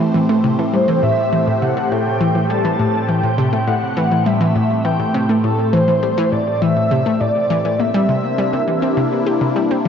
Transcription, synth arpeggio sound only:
0.14 E3
0.29 A3
0.44 C3
0.59 E3
0.73 G3
0.88 E3
1.03 A2
1.33 E3
1.47 A2
1.62 C3
1.77 A3
1.92 A2
2.21 E3
2.35 E3
2.50 G3
2.65 E3
2.79 A2
3.09 E3
3.23 A2
3.38 C3
3.53 A3
3.67 A2
3.97 E3
4.11 E3
4.26 G3
4.41 E3
4.56 A2
4.85 E3
5.00 A2
5.15 C3
5.29 A3
5.44 A2
5.73 E3
5.88 E3
6.03 G3
6.18 E3
6.32 A2
6.62 E3
6.77 A2
6.91 C3
7.06 A3
7.21 A2
7.50 E3
7.65 E3
7.79 A#3
7.94 G3
8.09 C3
8.38 G3
8.53 C3
8.67 E3
8.82 C4
8.97 C3
9.26 G4
9.41 C3
9.56 G3
9.71 C4

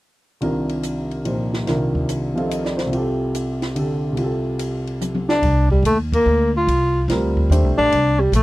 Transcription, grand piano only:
0.41 C2 C3 D#3 D4 F4 A#4
1.24 A#2 F3 D#4 G4 C5
1.67 C2 C3 D#3 D4 F4 A#4
2.34 C3 F3 C4 D#4 A4 F5
2.49 D#5
2.64 D5
2.77 C5
2.86 C2 C3
2.92 F4 G4
2.97 A4
3.75 D3 G4 A4
4.13 C2 C3
4.18 F4 G4
4.24 A4
7.10 G3 C4 F4 A#4
7.51 A3 D4 G4 C5

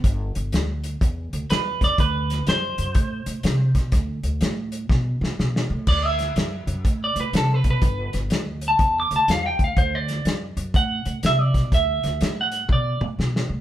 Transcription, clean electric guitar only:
1.50 B4
1.84 D5
2.00 B4
2.49 C5
5.88 D5
6.05 E5
7.04 D5
7.20 B4
7.37 A4
7.54 B4
7.71 B4
8.68 A5
9.00 D6
9.16 A5
9.31 F5
9.46 G5
9.64 F5
9.78 C5
9.95 D5
10.76 F#5
11.26 E5
11.41 D5
11.74 E5
12.41 F#5
12.73 D5

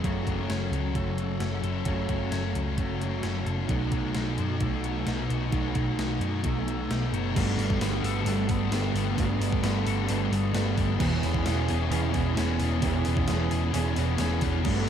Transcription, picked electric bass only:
0.04 F#1
0.27 F#1
0.50 F#1
0.71 C#2
0.95 F#1
1.40 F#1
1.63 F#1
1.86 F#1
2.09 F#1
2.32 F#1
2.55 C#2
2.78 F#1
3.23 F#1
3.46 F#1
3.69 B1
3.92 B1
4.15 B1
4.39 F#2
4.61 B1
5.06 B1
5.29 B1
5.52 B1
5.75 B1
5.98 B1
6.20 F#2
6.44 B1
6.90 B1
7.12 F#1
7.36 G1
7.58 G1
7.80 G1
8.02 G1
8.25 G1
8.49 G1
8.70 G1
8.93 G1
9.18 G1
9.39 G1
9.63 G1
9.87 G1
10.10 G1
10.31 G1
10.54 G1
10.77 G1
11.00 E1
11.23 E1
11.46 E1
11.70 E1
11.91 E1
12.14 E1
12.37 E1
12.60 E1
12.82 E1
13.06 E1
13.29 E1
13.51 E1
13.74 E1
13.97 E1
14.19 E1
14.42 E1
14.65 G1

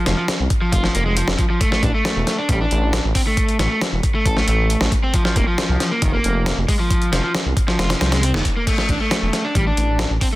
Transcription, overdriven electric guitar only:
0.07 F3
0.18 F3
0.61 F3
0.72 F4
0.83 F3
0.95 A#3
1.06 G#3
1.17 F3
1.39 F3
1.50 F3
1.60 A3
1.72 A3
1.83 D4
1.94 A3
2.38 D4
2.49 G3
2.61 D4
3.16 C4
3.27 A3
3.60 A3
3.71 A3
4.15 A3
4.26 A4
4.37 A3
4.48 A3
5.04 C4
5.14 F3
5.25 F3
5.36 A#3
5.47 F3
5.91 A#3
6.02 D#3
6.13 A#3
6.68 G#3
6.79 F3
7.12 F3
7.24 F3
7.68 F3
7.79 F4
7.90 F3
8.01 F3
8.12 G#3
8.23 C4
8.56 A#3
8.67 A3
8.79 A3
8.90 D4
9.01 A3
9.44 D4
9.55 G3
9.67 D4
10.22 C4

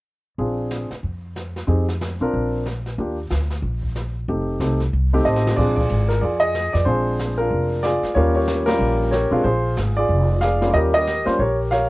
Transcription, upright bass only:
0.39 A#1
0.91 muted upright bass stroke
1.03 F2
1.68 F2
2.20 B1
2.33 A#1
2.98 D#2
3.31 D2
3.62 A#1
4.28 F1
4.60 C2
4.93 C2
5.25 A1
5.57 A#1
5.90 G#1
6.22 F2
6.74 F2
6.86 A#1
7.51 F1
8.03 muted upright bass stroke
8.16 D#2
8.79 A#1
9.31 B1
9.44 A#1
9.77 G#1
10.09 F1
10.73 D#2
11.27 muted upright bass stroke
11.39 A#1

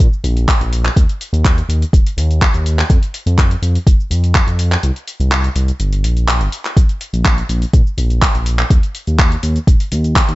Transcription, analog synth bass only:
0.24 A#1
0.60 A#1
0.96 D#2
1.33 D#2
1.69 D#2
1.93 D#1
2.17 D#2
2.54 D#2
2.90 F2
3.26 F2
3.62 F2
3.87 F1
4.11 F2
4.47 F2
4.83 C2
5.20 C2
5.56 C2
5.80 G1
6.04 A#1
6.41 G1
6.76 A#1
7.13 A#1
7.49 A#1
7.73 A#2
7.98 A#1
8.35 A#1
8.70 D#2
9.07 D#2
9.43 D#2
9.67 D#1
9.92 D#2
10.29 D#2

